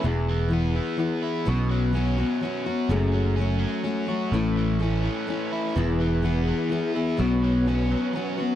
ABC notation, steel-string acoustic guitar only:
X:1
M:3/4
L:1/8
Q:1/4=126
K:Emix
V:1 name="Steel-string acoustic guitar"
[E,B,EG]2 [E,B,EG]2 [E,B,EG]2 | [B,,F,B,CF]2 [F,B,CF] [B,CF] [F,B,CF] [B,CF] | [F,,C,F,A,CF]2 [F,A,CF]2 [F,A,CF] [F,A,CF] | [A,CEB]2 [A,CEB]2 [A,CEB]2 |
[E,B,EG]2 [E,B,EG]2 [E,B,EG] [B,EG] | [B,,F,B,CF]2 [F,B,CF]2 [F,B,CF] [B,CF] |]